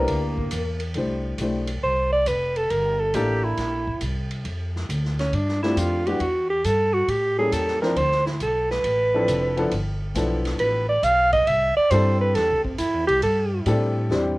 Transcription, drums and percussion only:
0.08 ride medium
0.38 kick medium
0.51 hi-hat pedal medium
0.51 ride medium
0.80 ride soft
0.94 ride medium
1.38 hi-hat pedal soft
1.38 ride medium
1.67 ride medium
2.26 hi-hat pedal medium
2.26 ride medium
2.56 ride soft
2.70 ride medium
3.13 hi-hat pedal medium
3.13 ride medium
3.57 snare soft
3.57 ride medium
3.87 kick medium
4.01 hi-hat pedal medium
4.01 ride medium
4.31 ride soft
4.45 ride medium
4.76 snare soft
4.90 hi-hat pedal medium
4.90 ride medium
5.05 snare soft
5.19 snare soft
5.19 ride soft
5.33 ride medium
5.48 snare soft
5.63 snare soft
5.77 hi-hat pedal medium
5.77 ride medium
6.07 ride soft
6.20 ride medium
6.64 hi-hat pedal medium
6.64 ride medium
7.08 ride medium
7.52 hi-hat pedal medium
7.52 ride medium
7.67 snare soft
7.83 snare soft
7.96 ride medium
8.12 snare soft
8.26 snare soft
8.40 hi-hat pedal soft
8.40 ride medium
8.70 snare soft
8.84 ride medium
9.28 hi-hat pedal medium
9.28 ride medium
9.57 ride soft
9.72 ride medium
10.15 hi-hat pedal medium
10.15 ride medium
10.45 snare soft
10.45 ride soft
10.59 ride medium
11.03 hi-hat pedal medium
11.03 ride medium
11.33 kick medium
11.33 ride medium
11.47 ride medium
11.91 hi-hat pedal medium
11.91 ride medium
12.35 snare soft
12.35 ride medium
12.65 kick medium
12.78 hi-hat pedal medium
12.78 ride medium
13.08 ride medium
13.22 ride medium
13.66 hi-hat pedal soft
13.66 ride medium
14.11 snare soft

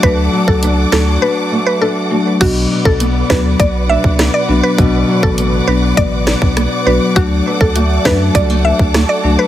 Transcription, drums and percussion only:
0.03 kick loud
0.03 closed hi-hat medium
0.48 kick loud
0.63 closed hi-hat medium
0.92 cross-stick loud
0.92 snare loud
2.41 kick loud
2.41 closed hi-hat medium
2.41 crash loud
2.85 kick loud
3.00 closed hi-hat medium
3.30 kick medium
3.30 cross-stick loud
3.30 snare loud
3.60 kick loud
3.60 closed hi-hat medium
4.04 kick medium
4.19 cross-stick medium
4.19 snare loud
4.19 closed hi-hat medium
4.78 kick loud
4.78 closed hi-hat medium
5.23 kick loud
5.38 closed hi-hat medium
5.97 kick loud
5.97 closed hi-hat medium
6.27 cross-stick medium
6.27 snare loud
6.42 kick medium
6.57 cross-stick medium
6.57 closed hi-hat medium
7.16 kick loud
7.16 closed hi-hat medium
7.61 kick loud
7.76 closed hi-hat medium
8.05 kick loud
8.05 cross-stick loud
8.05 snare loud
8.35 kick loud
8.35 closed hi-hat medium
8.79 kick medium
8.94 cross-stick loud
8.94 cross-stick medium
8.94 snare loud
8.94 closed hi-hat medium

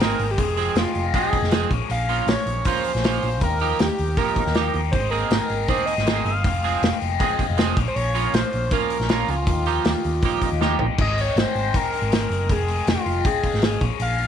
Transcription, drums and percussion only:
0.00 snare loud
0.00 open hi-hat medium
0.19 open hi-hat medium
0.38 kick loud
0.38 open hi-hat medium
0.57 open hi-hat soft
0.76 snare loud
0.76 open hi-hat medium
0.95 open hi-hat soft
1.14 kick loud
1.14 open hi-hat medium
1.33 kick medium
1.33 open hi-hat soft
1.44 snare soft
1.51 snare loud
1.51 open hi-hat medium
1.71 kick loud
1.71 open hi-hat soft
1.90 open hi-hat medium
2.09 open hi-hat soft
2.28 snare loud
2.28 open hi-hat medium
2.47 open hi-hat soft
2.65 kick loud
2.65 open hi-hat medium
2.85 open hi-hat soft
2.95 snare soft
3.04 snare loud
3.04 open hi-hat medium
3.23 open hi-hat medium
3.41 kick loud
3.41 open hi-hat medium
3.60 open hi-hat soft
3.79 snare loud
3.79 open hi-hat medium
3.98 open hi-hat medium
4.17 kick medium
4.17 open hi-hat medium
4.36 kick medium
4.36 open hi-hat soft
4.46 snare soft
4.55 snare loud
4.55 open hi-hat medium
4.74 open hi-hat soft
4.93 kick loud
4.93 open hi-hat medium
5.12 open hi-hat soft
5.31 snare loud
5.31 open hi-hat medium
5.50 open hi-hat soft
5.68 kick medium
5.68 open hi-hat medium
5.87 open hi-hat medium
5.98 snare soft
6.07 snare loud
6.07 open hi-hat medium
6.26 open hi-hat soft
6.44 kick loud
6.44 open hi-hat medium
6.64 open hi-hat soft
6.83 snare loud
6.83 open hi-hat medium
7.01 open hi-hat soft
7.20 kick loud
7.20 open hi-hat medium
7.39 kick medium
7.39 open hi-hat soft
7.58 snare loud
7.58 open hi-hat medium
7.77 kick loud
7.77 open hi-hat medium
7.96 open hi-hat medium
8.15 open hi-hat soft
8.34 snare loud
8.34 open hi-hat medium
8.53 open hi-hat soft
8.71 kick loud
8.71 open hi-hat medium
8.90 open hi-hat medium
9.01 snare soft
9.09 snare loud
9.09 open hi-hat medium
9.28 open hi-hat soft
9.47 kick loud
9.47 open hi-hat medium
9.66 open hi-hat soft
9.85 snare loud
9.85 open hi-hat medium
10.04 open hi-hat soft
10.22 kick loud
10.22 open hi-hat medium
10.41 kick medium
10.41 open hi-hat medium
10.61 snare medium
10.79 floor tom medium
10.98 kick loud
10.98 crash medium
11.18 open hi-hat soft
11.37 snare loud
11.37 open hi-hat medium
11.56 open hi-hat soft
11.74 kick loud
11.74 open hi-hat medium
11.94 open hi-hat soft
12.12 snare loud
12.12 open hi-hat medium
12.32 open hi-hat medium
12.49 kick loud
12.49 open hi-hat medium
12.68 open hi-hat soft
12.87 snare loud
12.87 open hi-hat medium
13.06 open hi-hat soft
13.25 kick loud
13.25 open hi-hat medium
13.43 kick medium
13.43 open hi-hat medium
13.54 snare soft
13.62 snare loud
13.62 open hi-hat medium
13.81 kick loud
13.81 open hi-hat soft
14.00 open hi-hat medium
14.18 open hi-hat soft

